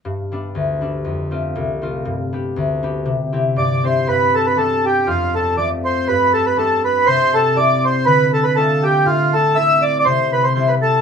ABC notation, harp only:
X:1
M:2/4
L:1/8
Q:"Swing" 1/4=120
K:Gmix
V:1 name="Harp"
G,, [G,B,D] D,, [G,B,D] | F,, [A,CF] C,, [A,CF] | G,, [B,DG] D,, [B,DG] | C, [CEG] G,, [CEG] |
G,,2 [G,B,D]2 | F,,2 [F,A,C]2 | G,,2 [G,B,D]2 | C,2 [G,CE]2 |
D,2 [A,DF]2 | A,,2 [A,CE]2 | C,2 [G,CE]2 |]